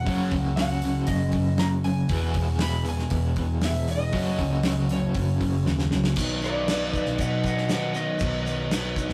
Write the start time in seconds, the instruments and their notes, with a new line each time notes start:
Already playing: electric slide guitar F#5
0.07 picked electric bass F#1, overdriven electric guitar F#2 C#3 F#3 A#3 C#4 F#4, kick, open hi-hat
0.31 picked electric bass C#2, overdriven electric guitar F#2 C#3, kick, open hi-hat
0.56 overdriven electric guitar F#2 C#3, electric slide guitar F#5, snare, open hi-hat
0.82 overdriven electric guitar F#2 C#3, open hi-hat
1.07 picked electric bass F#1, overdriven electric guitar F#2 C#3, electric slide guitar D#5, kick, open hi-hat
1.32 picked electric bass F#1, overdriven electric guitar F#2 C#3, kick, open hi-hat
1.58 overdriven electric guitar F#2 C#3, electric slide guitar A#5, snare, open hi-hat
1.84 overdriven electric guitar F#2 C#3, electric slide guitar G#5, open hi-hat
2.09 picked electric bass E1, overdriven electric guitar E2 B2 E3 G#3 B3 G#4, kick, open hi-hat
2.34 picked electric bass E1, overdriven electric guitar E2 B2, kick, open hi-hat
2.59 overdriven electric guitar E2 B2, electric slide guitar B5, snare, open hi-hat
2.85 overdriven electric guitar E2 B2, open hi-hat
2.89 electric slide guitar G#5
2.99 snare
3.10 picked electric bass E1, overdriven electric guitar E2 B2, kick, open hi-hat
3.36 picked electric bass E1, overdriven electric guitar E2 B2, kick, open hi-hat
3.62 overdriven electric guitar E2 B2, electric slide guitar E5, snare, open hi-hat
3.88 overdriven electric guitar E2 B2, electric slide guitar D#5, open hi-hat
4.12 picked electric bass F#1, overdriven electric guitar F#2 C#3 F#3 A#3 C#4 F#4, kick, open hi-hat
4.39 picked electric bass C#2, overdriven electric guitar F#2 C#3, kick, open hi-hat
4.63 overdriven electric guitar F#2 C#3, snare, open hi-hat
4.89 overdriven electric guitar F#2 C#3, electric slide guitar C#5, open hi-hat
5.15 picked electric bass F#1, overdriven electric guitar F#2 C#3, kick, open hi-hat
5.41 picked electric bass F#1, overdriven electric guitar F#2 C#3, kick, open hi-hat
5.66 picked electric bass D#2, overdriven electric guitar F#2 C#3, snare
5.79 snare
5.91 picked electric bass C#2, overdriven electric guitar F#2 C#3, snare
6.04 snare
6.16 picked electric bass B1, overdriven electric guitar B2 D#3 F#3 B3 D#4, kick, crash, shaker
6.41 overdriven electric guitar F#3 B3 D#4, electric slide guitar D5, crash, shaker
6.45 electric slide guitar B4
6.67 overdriven electric guitar D#3 F#3 B3 D#4, electric slide guitar B4 D5, snare, crash, shaker
6.93 overdriven electric guitar F#3 B3 D#4, electric slide guitar B4 D5, kick, crash, shaker
7.06 picked electric bass B1, snare
7.18 picked electric bass B2, electric slide guitar D#5 F#5, kick, crash, shaker
7.43 electric slide guitar D#5 F#5, kick, crash, shaker
7.57 snare
7.69 overdriven electric guitar B2 D#3 F#3 B3 D#4, electric slide guitar D#5 F#5, snare, crash, shaker
7.95 overdriven electric guitar F#3 B3 D#4, electric slide guitar D#5, crash, shaker
8.19 picked electric bass B1, overdriven electric guitar B2 D#3 F#3 B3 D#4, kick, crash, shaker
8.46 overdriven electric guitar F#3 B3 D#4, crash, shaker
8.71 overdriven electric guitar D#3 F#3 B3 D#4, snare, crash, shaker
8.96 overdriven electric guitar F#3 B3 D#4, kick, crash, shaker
9.09 picked electric bass B1, snare